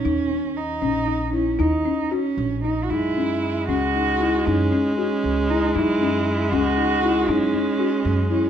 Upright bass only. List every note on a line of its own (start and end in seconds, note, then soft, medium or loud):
0.05 0.78 D#2 medium
0.82 1.55 A#1 medium
1.59 1.83 D#2 medium
2.37 2.86 A#1 medium
2.90 3.65 F#2 medium
3.69 4.42 C#2 medium
4.47 4.70 F#2 medium
5.24 5.71 C#2 medium
5.75 6.48 F#2 medium
6.52 7.24 C#2 medium
7.28 7.52 F#2 medium
8.05 8.50 F#2 medium